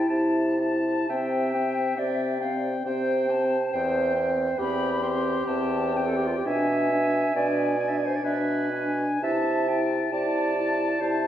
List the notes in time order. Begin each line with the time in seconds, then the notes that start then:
Already playing: E4 G5
0.09 C3 E4 A5
0.60 E4 A5
1.09 C3 C4 E5 G5
1.54 C4 G5
1.97 C3 C4 D5 E5 G5
2.40 C4 F5 G5
2.85 C3 C4 C5 G5
3.29 C4 G5 A5
3.71 E2 C4 C5 G5
4.15 C4 G5
4.58 E2 C4 G4 G5 B5
5.02 C4 G5 C6
5.46 E2 C4 G5 A5
5.96 C4 G5
6.07 A4
6.17 G4
6.27 F4
6.37 G4
6.45 B2 D4 E5 G#5
6.92 D4 G#5
7.35 B2 D4 D5 G#5
7.78 D4 G#5
7.88 E5
7.98 D5
8.06 C5
8.15 D5
8.23 B2 D4 B4 E5 G#5
8.72 D4 G#5
9.22 C3 E4 E5 A5
9.68 E4 G5 A5
10.12 C3 E4 D5 A5
10.56 E4 A5
11.01 C3 E4 C5 A5